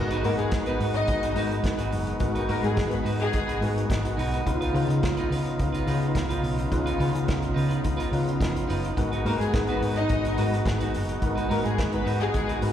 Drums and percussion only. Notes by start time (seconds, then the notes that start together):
0.11 closed hi-hat
0.24 open hi-hat
0.39 closed hi-hat
0.51 kick, snare, closed hi-hat
0.66 closed hi-hat
0.80 open hi-hat
0.94 closed hi-hat
1.07 kick, closed hi-hat
1.23 closed hi-hat
1.36 open hi-hat
1.51 closed hi-hat
1.64 kick, snare, closed hi-hat
1.79 closed hi-hat
1.92 open hi-hat
2.07 closed hi-hat
2.20 kick, closed hi-hat
2.35 closed hi-hat
2.49 open hi-hat
2.64 closed hi-hat
2.77 kick, snare, closed hi-hat
2.91 closed hi-hat
3.06 open hi-hat
3.20 closed hi-hat
3.33 kick, closed hi-hat
3.49 closed hi-hat
3.62 open hi-hat
3.78 closed hi-hat
3.90 kick, snare, closed hi-hat
4.05 closed hi-hat
4.19 open hi-hat
4.34 closed hi-hat
4.47 kick, closed hi-hat
4.62 closed hi-hat
4.75 open hi-hat
4.90 closed hi-hat
5.03 kick, snare, closed hi-hat
5.17 closed hi-hat
5.32 open hi-hat
5.46 closed hi-hat
5.59 kick, closed hi-hat
5.74 closed hi-hat
5.87 open hi-hat
6.03 closed hi-hat
6.15 kick, snare, closed hi-hat
6.30 closed hi-hat
6.44 open hi-hat
6.59 closed hi-hat
6.72 kick, closed hi-hat
6.87 closed hi-hat
7.00 open hi-hat
7.15 closed hi-hat
7.28 kick, snare, closed hi-hat
7.42 closed hi-hat
7.57 open hi-hat
7.71 closed hi-hat
7.84 kick, closed hi-hat
8.00 closed hi-hat
8.13 open hi-hat
8.29 closed hi-hat
8.41 kick, snare, closed hi-hat
8.56 closed hi-hat
8.70 open hi-hat
8.85 closed hi-hat
8.97 kick, closed hi-hat
9.13 closed hi-hat
9.26 open hi-hat
9.41 closed hi-hat
9.54 kick, snare, closed hi-hat
9.68 closed hi-hat
9.83 open hi-hat
9.96 closed hi-hat
10.09 kick, closed hi-hat
10.25 closed hi-hat
10.38 open hi-hat
10.54 closed hi-hat
10.66 kick, snare, closed hi-hat
10.81 closed hi-hat
10.94 open hi-hat
11.09 closed hi-hat
11.22 kick, closed hi-hat
11.38 closed hi-hat
11.51 open hi-hat
11.66 closed hi-hat
11.78 kick, snare, closed hi-hat
11.92 closed hi-hat
12.07 open hi-hat
12.21 closed hi-hat
12.34 kick, closed hi-hat
12.49 closed hi-hat
12.62 open hi-hat